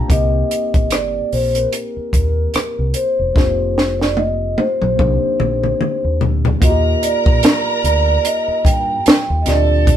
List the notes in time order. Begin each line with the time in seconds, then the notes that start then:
Already playing: A#3 C4 D4 F4 G4 F5 G5 A5 A#5
0.08 C2 A#3 C4 D#4 G4 D#5, kick, closed hi-hat
0.51 closed hi-hat
0.74 G1, kick, closed hi-hat
0.91 D5, cross-stick, closed hi-hat
1.33 A#1 C5, open hi-hat
1.49 C5
1.55 A#4, closed hi-hat
1.73 closed hi-hat
1.97 muted fingered electric bass stroke
2.13 D#2 A#4, kick, closed hi-hat
2.54 muted fingered electric bass stroke, cross-stick, closed hi-hat
2.79 C2
2.94 C5, closed hi-hat
3.19 E1
3.34 F1 A#3 C4 D#4 F4 G4, kick, snare
3.78 snare
4.00 D5, snare
4.17 D#5, high tom
4.58 C5, muted fingered electric bass stroke, high tom
4.82 A#1, mid tom
4.97 C2 A#3 C4 D4 D#4 G4 C5, kick, mid tom
5.23 muted fingered electric bass stroke
5.40 A#1, mid tom
5.64 mid tom
5.81 mid tom
6.04 D#2
6.21 D2, floor tom
6.45 floor tom
6.60 D#2 A#3 D#4 F4 F#4 A#4 D#5 A#5, kick, closed hi-hat
6.70 G4
7.03 D5, closed hi-hat
7.26 A#1, kick
7.43 snare, closed hi-hat
7.84 D2 D5, closed hi-hat
8.25 D#5, closed hi-hat
8.48 muted fingered electric bass stroke
8.65 G2 G5, kick, closed hi-hat
9.06 muted fingered electric bass stroke, snare, closed hi-hat
9.30 D#2
9.42 A#2 D#5
9.46 D2 C4 D4 F4 G4 A4 D5 A5, snare, closed hi-hat
9.87 kick, closed hi-hat